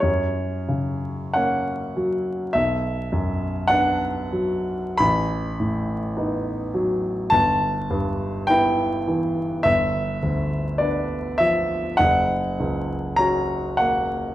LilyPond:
<<
  \new Staff \with { instrumentName = "Grand piano" } { \time 4/4 \key b \minor \tempo 4 = 51 cis''4 fis''4 e''4 fis''4 | b''2 a''4 g''8 r8 | e''4 d''8 e''8 fis''4 ais''8 fis''8 | }
  \new Staff \with { instrumentName = "Grand piano" } { \clef bass \time 4/4 \key b \minor fis,8 cis8 <ais cis'>8 fis8 b,,8 fis,8 <b d'>8 fis8 | a,,8 a,8 <b dis'>8 fis8 g,,8 g,8 <b e'>8 e8 | g,,8 d,8 <b d'>8 f8 fis,,8 cis,8 <cis' fis'>8 ais8 | }
>>